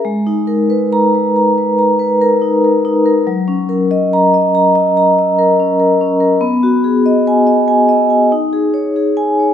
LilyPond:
\new Staff \with { instrumentName = "Vibraphone" } { \time 5/4 \key gis \minor \tempo 4 = 94 << { r4 \tuplet 3/2 { r8 ais''4 } r2. | r4 \tuplet 3/2 { r8 ais''4 } r2. | r4 \tuplet 3/2 { r8 gis''4 } r2 \tuplet 3/2 { r8 gis''4 } | } \\ { \tuplet 3/2 { gis8 dis'8 ais'8 b'4 b'8 ais''8 b'8 ais''8 b'8 ais'8 dis'8 ais'8 dis'8 ais'8 } | \tuplet 3/2 { fis8 cis'8 ais'8 dis''4 dis''8 ais''8 dis''8 ais''8 dis''8 ais'8 cis'8 ais'8 cis'8 ais'8 } | \tuplet 3/2 { b8 fis'8 gis'8 dis''4 dis''8 gis''8 dis''8 gis''8 dis'8 gis'8 cis''8 gis'4 cis''8 } | } >> }